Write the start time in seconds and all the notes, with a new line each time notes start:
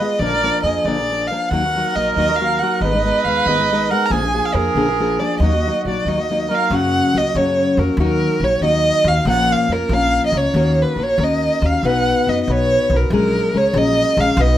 Already playing: B4 D#5
0.00 G#3 B3 F4 G#4
0.19 A#1 A#2 D3 F3 A#3 D4 A#4 D5
0.33 F3 A#3 D4 A#4
0.43 F3 A#3 D4 A#4
0.63 F2 F3 A#3 D4 G#4 A#4 D#5
0.85 A#1 A#2 D3 F3 A#3 D4 A#4 D5
0.98 F3 A#3 D4 A#4
1.10 F3 A#3 D4 A#4
1.27 F3 A#3 F5
1.32 D4 A#4
1.49 D#2 D#3 F#3 D#4 A#4 F#5
1.53 A#3 F#4
1.65 A#3 D#4 F#4
1.75 F#3 A#3 D#4 F#4
1.96 A#1 F#3 A#3 D#4 F#4 D#5
2.15 D#2 D#3 F#3 A#3 D#4 F#4 D#5
2.29 A#3 D#4 F#4
2.36 F5
2.40 F#3 A#3 D#4 F#4
2.59 F#3 A#3 D#4 F#4 F#5
2.81 G#1 G#2 D#3 G#3 B3 D#4 A#4 B4 D#5
2.94 G#3 B3 D#4 A#4
3.04 G#3 B3 D#4 A#4
3.24 D#2 G#3 B3 D#4 A#4 F5
3.46 G#1 G#2 D#3 G#3 B3 D#4 A#4 D#5
3.59 G#3 B3 D#4 A#4
3.72 G#3 B3 D#4 A#4
3.90 G#3 B3 D#4 A#4 F#5
4.05 A#5
4.10 A#1 A#2 D3 F3 A#3 D4 G#4 G#5
4.23 F3 A#3 D4 G#4
4.33 F3 A#3 D4 G#4
4.45 F5
4.54 F2 F3 A#3 D4 G#4 A#4
4.75 A#1 A#2 D3 F3 A#3 D4 G#4
4.88 F3 A#3 D4 G#4
5.00 F3 A#3 D4 G#4
5.20 F3 A#3 D4 G#4 D5
5.40 D#2 D#3 F#3 A#3 D#4 F#4 D#5
5.55 A#3 D#4 F#4
5.66 F#3 A#3 D#4 F#4
5.85 A#1 F#3 A#3 D#4 F#4 D5
6.05 D#2 D#3 F#3 A#3 D#4 F#4 D#5
6.17 A#3 D#4 F#4
6.30 F#3 A#3 D#4 F#4
6.49 F#3 A#3 D#4 F#4 A#4
6.55 F5
6.70 F#2 C#3 F#3 A#3 C#4 F#4
6.75 F#5
7.14 C#2 F#3 A#3 C#4 F#4 D#5
7.35 F#2 C#3 F#3 A#3 C#4 F#4 C#5
7.77 F2 F#3 A#3 C#4 F#4 A#4
7.97 D#2 D#3 F#3 A#3 D#4 F#4
8.02 A#4
8.40 A#1 F#3 A#3 D#4 F#4
8.44 C#5
8.61 D#2 D#3 F#3 A#3 D#4 F#4 D#5
9.04 D#2 A#3 D#4 F#4 F5
9.25 A#1 A#2 F3 A#3 C#4 F4 A#4
9.29 F#5
9.52 F5
9.69 F2 A#3 C#4 F4 A#4
9.73 A#4
9.89 A#1 A#2 F3 A#3 C#4 F4 A#4
9.93 F5
10.27 D#5
10.32 C#2 A#3 C#4 F4 A#4
10.37 C#5
10.54 D#2 D#3 A#3 C#4 F#4 A#4
10.82 B4
10.96 A#1 A#3 C#4 F#4 A#4
11.03 C#5
11.18 D#2 D#3 A#3 C#4 F#4 A#4
11.23 D#5
11.62 D#2 C#4 F#4 A#4
11.66 F5
11.83 B1 B2 B3 D#4 F#4 B4 F#5
12.27 F#2 B3 D#4 F#4 B4 D#5
12.43 D#5
12.47 B1 B2 B3 D#4 F#4 B4 C#5
12.90 B1 F#4 B4
12.94 D#4 A#4
13.10 A#1 A#2 F#3 G#3 C#4 G#4 A#4
13.16 A#4
13.53 C#2 G#3 C#4 G#4 A#4
13.57 C#5
13.74 A#1 A#2 F#3 G#3 C#4 G#4 A#4
13.78 D#5
14.17 A#1 G#3 C#4 G#4 A#4 F5
14.37 B1 B2 B3 D#4 F#4 B4
14.41 D#5